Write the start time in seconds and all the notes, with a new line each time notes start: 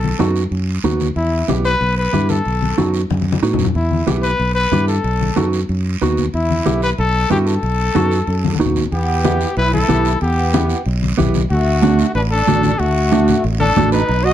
Already playing: B1 A4
0.04 high conga
0.19 F#2 B3 D#4 F#4, high conga, short guiro
0.36 short guiro
0.51 F#2, high conga, long guiro
0.84 D#2 B3 D#4 F#4, high conga, short guiro
1.00 high conga, short guiro
1.16 E2 E4, high conga, long guiro
1.48 B1 B3 E4 G4, high conga, short guiro
1.65 B4, short guiro
1.81 B1, high conga, long guiro
1.98 B4
2.13 G2 B3 E4 G4, high conga, short guiro
2.29 A4, high conga, short guiro
2.45 B1, high conga, long guiro
2.62 high conga
2.78 F#2 B3 D#4 F#4, high conga, short guiro
2.94 short guiro
3.10 F#2, high conga, long guiro
3.21 high conga
3.32 high conga
3.43 A2 B3 D#4 F#4, short guiro
3.54 low conga
3.59 F#2, short guiro
3.65 low conga
3.75 E2 E4, high conga, long guiro
3.91 high conga
4.07 B1 B3 E4 G4, high conga, short guiro
4.22 B4, short guiro
4.39 B1, high conga, long guiro
4.55 B4
4.72 G2 B3 E4 G4, high conga, short guiro
4.87 A4, short guiro
5.04 B1, high conga, long guiro
5.21 high conga
5.36 F#2 B3 D#4 F#4, high conga, short guiro
5.53 short guiro
5.69 F#2, high conga, long guiro
6.02 D#2 B3 D#4 F#4, high conga, short guiro
6.17 high conga, short guiro
6.34 E2 E4, high conga, long guiro
6.50 high conga
6.66 B1 B3 E4 G4, high conga, short guiro
6.82 B4, short guiro
6.98 B1 A4, high conga, long guiro
7.30 G2 B3 E4 F#4 G4, high conga, short guiro
7.47 A4, short guiro
7.63 B1, high conga, long guiro
7.95 F#2 B3 D#4 F#4, high conga, short guiro
8.11 short guiro
8.27 F#2, high conga, long guiro
8.44 high conga
8.55 high conga
8.60 D#2 B3 D#4 F#4, short guiro
8.66 low conga
8.76 low conga, short guiro
8.92 E2 B3 G4, high conga, long guiro
9.24 B3 E4 G4, high conga, short guiro
9.41 short guiro
9.57 B1 E4 B4, high conga, long guiro
9.73 E4 A4, high conga
9.89 B1 B3 E4 G4, high conga, short guiro
10.05 short guiro
10.21 E2 B3 G4, high conga, long guiro
10.53 B3 E4 G4, high conga, short guiro
10.69 short guiro
10.86 B1, high conga, long guiro
11.02 high conga
11.18 B1 B3 E4 G4, high conga, low conga, short guiro
11.34 high conga, short guiro
11.50 D2 A3 F#4, high conga, long guiro
11.82 A3 D4 F#4, high conga, short guiro
11.99 short guiro
12.14 A1 D4 B4, high conga, long guiro
12.31 D4 A4
12.47 A1 A3 D4 F#4, high conga, short guiro
12.63 high conga, short guiro
12.79 D2 A3 F#4, high conga, long guiro
13.12 A3 D4 F#4, high conga, short guiro
13.28 low conga, short guiro
13.44 A1, high conga, long guiro
13.59 D4 A4, high conga
13.76 A1 A3 D4 F#4, high conga, low conga, short guiro
13.92 D#4 B4, short guiro
14.09 B1, high conga, long guiro
14.24 F#4 D#5